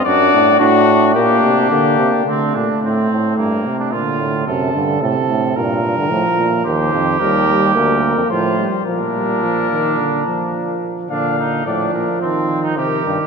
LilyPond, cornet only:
\new Staff \with { instrumentName = "Cornet" } { \time 4/4 \key g \minor \tempo 4 = 108 d''4 fis'4 g'4 g'4 | r1 | r1 | \key bes \major c''4 bes'4 bes'4 c''4 |
bes'2.~ bes'8 r8 | f''4 d''8 bes'8 c''4 bes'4 | }